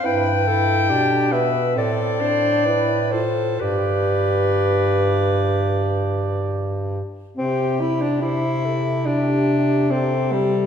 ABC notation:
X:1
M:4/4
L:1/16
Q:1/4=69
K:C
V:1 name="Clarinet"
g6 e2 d6 c2 | B12 z4 | G4 G8 G2 A2 |]
V:2 name="Alto saxophone"
B2 A2 G2 B2 A2 c2 B2 A2 | d12- d2 z2 | G4 c2 A2 G4 A4 |]
V:3 name="Tenor saxophone"
E2 E2 D2 B,2 C2 D2 E2 F2 | G12- G2 z2 | C2 E D E4 D4 C2 G,2 |]
V:4 name="Bass clarinet" clef=bass
G,,4 B,,4 A,,8 | G,,12- G,,2 z2 | C,16 |]